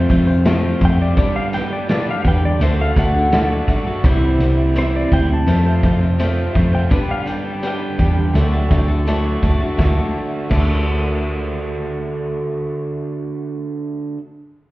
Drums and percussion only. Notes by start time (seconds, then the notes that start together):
0.10 kick, closed hi-hat
0.45 snare, closed hi-hat
0.81 kick, closed hi-hat
1.17 kick, closed hi-hat
1.53 snare, closed hi-hat
1.89 snare, closed hi-hat
2.25 kick, closed hi-hat
2.61 closed hi-hat
2.96 kick, closed hi-hat
3.32 snare, closed hi-hat
3.68 kick, closed hi-hat
4.04 kick, closed hi-hat
4.40 closed hi-hat
4.76 closed hi-hat
5.12 kick, closed hi-hat
5.47 closed hi-hat
5.83 kick, closed hi-hat
6.19 closed hi-hat
6.55 kick, closed hi-hat
6.91 kick, closed hi-hat
7.27 closed hi-hat
7.63 closed hi-hat
7.99 kick, closed hi-hat
8.35 closed hi-hat
8.71 kick, closed hi-hat
9.07 closed hi-hat
9.43 kick, closed hi-hat
9.79 kick, snare
10.51 kick, crash